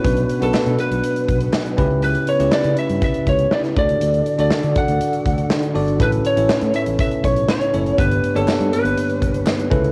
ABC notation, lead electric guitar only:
X:1
M:4/4
L:1/16
Q:1/4=121
K:Glyd
V:1 name="Lead electric guitar"
B3 A3 B8 z2 | B2 c2 d2 e2 e2 c2 d2 d2- | d3 d3 f8 z2 | B2 c4 e2 e2 c2 c4 |
B3 A3 B8 z2 |]